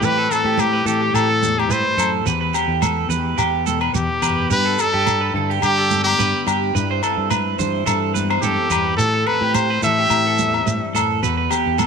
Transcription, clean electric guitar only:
0.03 G4
0.18 A4
0.46 G4
0.73 B4
0.86 A4
1.02 G4
1.30 A4
1.71 B4
1.98 A4
2.27 B4
2.41 B4
2.54 G4
2.82 A4
3.10 B4
3.38 G4
3.66 A4
3.81 B4
3.94 muted clean electric guitar stroke
4.22 B4
4.50 G4
4.65 A4
4.94 G4
5.21 B4
5.36 A4
5.50 G4
5.78 A4
6.19 B4
6.47 G4
6.75 B4
6.91 C5
7.04 A4
7.31 B4
7.59 C5
7.86 A4
8.14 B4
8.30 C5
8.44 A4
8.71 B4
8.99 muted clean electric guitar stroke
9.14 A4
9.42 G4
9.70 B4
9.83 A4
9.99 G4
10.27 A4
10.68 muted clean electric guitar stroke
10.95 A4
11.23 B4
11.37 B4
11.50 G4
11.78 A4

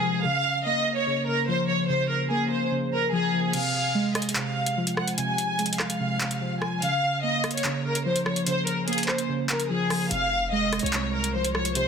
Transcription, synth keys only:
Already playing: C3 F3 G#3
0.04 F3
0.25 C#3
0.45 C#3
0.66 A#3
1.07 C#3
1.27 C#3
1.48 F3
1.68 F3
1.89 C#3
2.10 C#3
2.30 A#3
2.71 C#3
2.92 C#3
3.12 F3
3.33 F3
3.54 C3
3.74 C3
3.95 G#3
4.36 C3
4.56 C3
4.77 F3
4.97 F3
5.18 C3
5.38 C3
5.59 G#3
6.00 C3
6.20 C3
6.41 F3
6.61 F3
6.82 C#3
7.02 C#3
7.23 A#3
7.64 C#3
7.85 C#3
8.05 F3
8.26 F3
8.46 C#3
8.67 C#3
8.88 A#3
9.29 C#3
9.49 C#3
9.70 F3
9.90 F3
10.11 C3
10.31 C3
10.52 G#3
10.93 C3
11.14 C3
11.34 F3
11.55 F3
11.75 C3

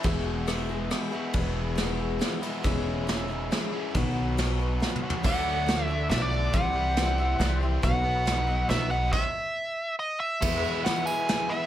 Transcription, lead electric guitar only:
5.26 F#5
5.85 E5
6.10 E5
6.22 D5
6.54 F#5
7.84 F#5
8.70 E5
8.91 F#5
9.12 E5
9.99 D#5
10.20 E5
10.85 F#5
11.06 G#5
11.50 E5

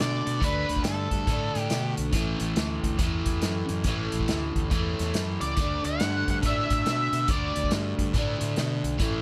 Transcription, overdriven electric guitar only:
Already playing: D3 A3 D4
0.41 D3 A3 D4
1.27 D3 A3 D4
2.12 A2 E3 A3
2.98 A2 E3 A3
3.84 A2 E3 A3
4.70 A2 E3
4.74 A3
5.56 D3 A3
5.60 D4
6.42 D3 A3
6.46 D4
7.28 D3 A3 D4
8.13 D3 A3
8.18 D4
8.99 A2 E3 A3

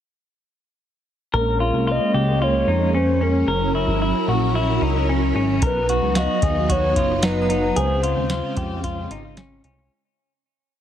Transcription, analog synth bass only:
1.33 A#1
1.73 C2
2.14 C#2
2.67 F2
3.47 F#1
3.88 G#1
4.28 A#1
4.82 C#2
5.35 G#1
5.62 B1
6.02 C#2
6.42 D#2
6.96 F#1
7.76 C#2
8.17 D#2
8.57 F2
9.11 G#1
9.64 C2

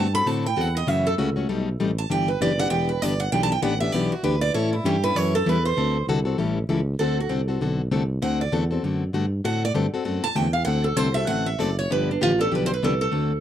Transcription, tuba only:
Already playing: G2
0.26 A2
0.58 E2
0.88 F#2
1.18 C#2
1.49 B1
1.80 A1
2.10 G1
2.40 F#1
2.70 E1
3.02 G1
3.32 B1
3.62 A1
3.93 B1
4.23 D2
4.53 A2
4.84 G2
5.16 F#2
5.46 E2
5.76 D2
6.07 C2
6.38 A1
6.68 C#2
6.99 D2
7.30 C2
7.61 B1
7.91 C2
8.22 D2
8.53 E2
8.83 F#2
9.14 G2
9.44 A2
9.75 G2
9.93 G2
10.05 F#2
10.23 F#2
10.36 E2
10.66 D2
10.97 C2
11.28 A1
11.59 F#1
11.90 G1
12.21 A1
12.52 B1
12.83 C2
13.12 D2

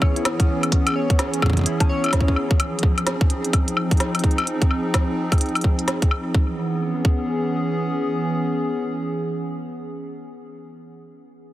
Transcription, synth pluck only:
0.02 C#5
0.16 E4
0.40 C#4
0.63 C#4
0.72 C#4
0.96 C#5
1.19 C#4
1.34 C#4
1.42 G#4
1.66 E4
1.80 C#4
1.89 C#5
2.04 E4
2.27 C#4
2.51 C#4

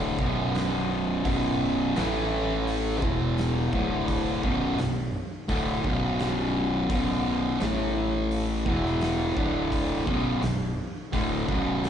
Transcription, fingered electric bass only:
Already playing: D1
0.19 B0
1.25 B0
1.98 A1
3.03 E1
3.73 D1
4.43 B0
4.80 B0
5.49 D1
5.85 B0
6.90 B0
7.61 A1
8.66 E1
9.36 D1
10.08 B0
10.43 B0
11.13 D1
11.49 B0

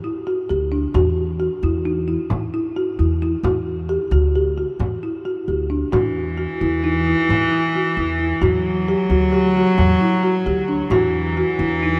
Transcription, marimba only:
0.04 E4
0.27 F#4
0.49 G4
0.72 D4
0.95 F#4
1.40 F#4
1.64 E4
1.85 D#4
2.08 E4
2.54 E4
2.76 F#4
2.99 E4
3.22 E4
3.45 F#4
3.89 G4
4.12 F#4
4.36 G4
4.58 F#4
5.03 E4
5.25 F#4
5.48 G4
5.70 D4
5.92 F#4
6.37 F#4
6.61 E4
6.84 D#4
7.06 E4
7.52 E4
7.76 F#4
7.97 E4
8.19 E4
8.42 F#4
8.88 G4
9.11 F#4
9.33 G4
9.57 F#4
10.01 E4
10.23 F#4
10.46 G4
10.68 D4
10.92 F#4
11.37 F#4
11.60 E4
11.83 D#4

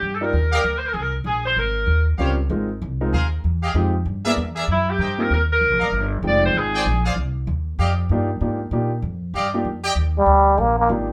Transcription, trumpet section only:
0.52 G4 D5 D#5 F5
2.18 G4 C5 C#5 F5
3.13 G#4 A#4 C5 F5
3.63 G4 G#4 D#5 F5
4.25 G#4 A#4 D5 E5
4.56 G#4 A#4 D5 E5
5.00 A#4 C5 D#5 G5
5.80 A#4 D5 D#5 F5
6.74 G#4 C5 D5 G5
7.04 G#4 C5 D5 F5
7.79 G4 D5 D#5 F5
9.35 G4 D5 D#5 F5
9.84 G4 D5 D#5 G5

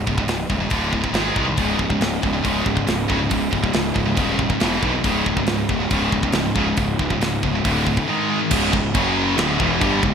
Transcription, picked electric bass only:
0.07 C#1
0.27 C#1
0.49 D#1
0.71 D1
1.13 G#1
1.36 C2
1.57 C#1
1.79 C#1
2.01 C#1
2.23 C#1
2.45 C#1
2.66 C#1
2.88 C#1
3.10 C#1
3.32 C#1
3.53 C#1
3.75 C#1
3.96 C#1
4.17 D#1
4.61 E1
4.83 B1
5.04 C#1
5.26 C#1
5.45 C#1
5.69 C#1
5.91 C#1
6.13 C#1
6.33 C#1
6.56 C#1
6.78 C#1
6.99 C#1
7.21 C#1
7.43 C#1
7.65 D1
8.51 C#1
8.74 C#1
8.95 F#1
9.38 D1
9.60 E1
9.81 G1
10.03 C#1

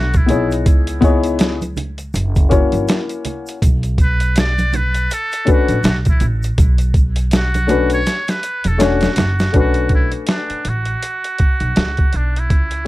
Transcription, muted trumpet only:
Already playing: F#4
0.17 E4
4.02 B4
4.39 D5
4.76 B4
5.13 A4
5.52 F#4
5.88 F#4
6.09 E4
7.36 F#4
7.93 C#5
8.30 B4
8.68 A4
8.83 F#4
9.59 F#4
9.95 E4
10.30 D4
10.69 F#4
12.16 D4
12.39 E4

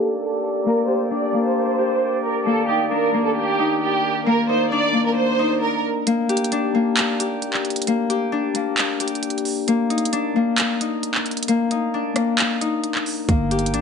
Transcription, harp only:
Already playing: A#3 D4
0.00 G4
0.66 A#3
0.88 G4
1.11 D4
1.33 A#3
1.78 G4
2.46 A#3
2.68 D#4
2.91 D4
3.14 A#3
3.59 D#4
4.26 A#3
4.49 D#4
4.72 D4
4.94 A#3
5.39 D#4
6.07 A#3
6.29 G4
6.52 D4
6.75 A#3
7.20 G4
7.87 A#3
8.10 G4
8.32 D4
8.55 A#3
9.00 G4
9.68 A#3
9.90 D#4
10.13 D4
10.36 A#3
10.81 D#4
11.48 A#3
11.71 D#4
11.94 D4
12.16 A#3
12.61 D#4
13.29 A#3
13.51 G4
13.74 D4

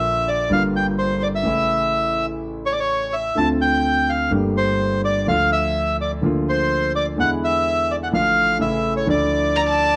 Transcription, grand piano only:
Already playing: A#1 A#2 D3 F3 A#3 F4
0.49 G1 G2 D3 G3 A#3 F4
1.43 A1 A2 C#3 E3 A3 E4
3.35 D2 D3 A3 C4
3.39 F4
4.30 G1 G2 D3 A3 A#3
4.34 G4
5.28 D2 D3 F3 A3 F4
6.23 D2 D3 F3 A#3 F4
7.16 E2 D3 E3 G#3 B3 E4
8.11 A1 A2 D3 F3 A3 F4
8.59 A1 A2 C#3 E3 A3 E4
9.06 D2 D3 F3 A3 E4

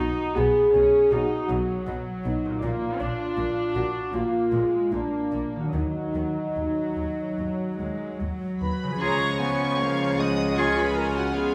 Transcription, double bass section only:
0.37 B1
0.75 B1
1.12 B1
1.50 B1
1.88 B1
2.26 B1
2.63 A#1
3.00 A#1
3.38 A#1
3.75 A#1
4.14 A#1
4.53 A#1
4.93 A#1
5.32 A#1
5.74 D#2
6.15 D#2
6.56 D#2
6.97 D#2
7.39 D#2
7.80 D#2
8.20 D#2
8.61 D#2
9.01 C#2

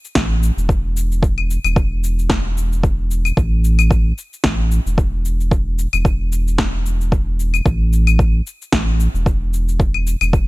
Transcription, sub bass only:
0.15 A1
0.57 E1
1.64 E1
3.37 A1
4.44 A1
4.86 E1
5.93 E1
7.66 A1
8.73 A1
9.14 E1
10.21 E1

